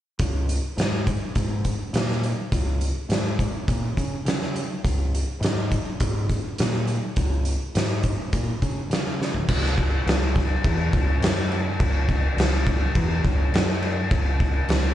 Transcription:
0.19 C#2, kick, closed hi-hat
0.49 closed hi-hat
0.77 G#2, snare, closed hi-hat
1.07 kick, closed hi-hat
1.35 G#2, kick, closed hi-hat
1.65 kick, closed hi-hat
1.93 A#2, snare, closed hi-hat
2.11 snare
2.24 closed hi-hat
2.52 C#2, kick, closed hi-hat
2.81 closed hi-hat
3.09 G#2, snare, closed hi-hat
3.39 kick, closed hi-hat
3.68 A#2, kick, closed hi-hat
3.97 C#3, kick, closed hi-hat
4.25 C#3, snare, closed hi-hat
4.42 snare
4.56 closed hi-hat
4.84 C#2, kick, closed hi-hat
5.15 closed hi-hat
5.41 G#2, snare, closed hi-hat
5.72 kick, closed hi-hat
6.00 G#2, kick, closed hi-hat
6.29 kick, closed hi-hat
6.58 A#2, snare, closed hi-hat
6.87 closed hi-hat
7.16 C#2, kick, closed hi-hat
7.45 closed hi-hat
7.75 G#2, snare, closed hi-hat
8.03 kick, closed hi-hat
8.33 A#2, kick, closed hi-hat
8.62 C#3, kick, closed hi-hat
8.90 C#3, snare, closed hi-hat
9.22 snare
9.34 floor tom
9.48 C#2, kick, crash
9.66 snare
9.78 kick, crash
10.06 C#2, snare, crash
10.36 kick, snare, crash
10.64 E2, kick, crash
10.93 C#2, kick, crash
11.20 F#2, snare, crash
11.52 crash
11.80 C#2, kick, crash
12.09 kick, crash
12.36 C#2, snare, crash
12.67 kick, crash
12.95 E2, kick, crash
13.24 C#2, kick, crash
13.52 F#2, snare, crash
13.82 crash
14.11 C#2, kick, crash
14.40 kick, crash
14.68 C#2, snare, crash

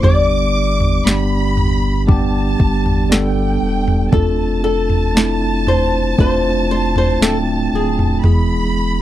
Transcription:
0.03 G1 G2 G3 B3 D4 G4 D5 D6, floor tom
0.80 floor tom
1.05 G1 G3 B3 D4 G4 B5, snare
1.57 floor tom
2.07 G3 B3 D4 G4 A5, kick, floor tom
2.60 G1, kick
2.86 floor tom
3.09 G3 B3 D4 A4 G5, snare
3.62 E1
3.88 floor tom
4.11 F1 A3 C4 D4 F4 A4 A5, kick, floor tom
4.64 A4
4.89 floor tom
5.15 A3 C4 D4 E4, snare
5.67 C5, floor tom
6.18 F1 A3 C4 D4 F4 C5, kick, floor tom
6.71 C5
6.96 C5, floor tom
7.20 D1 A3 C4 D4 A4 G5, snare
7.72 D1 G#4
7.99 floor tom
8.23 E1 E3 G#3 B3 E4 G#4 B5, floor tom

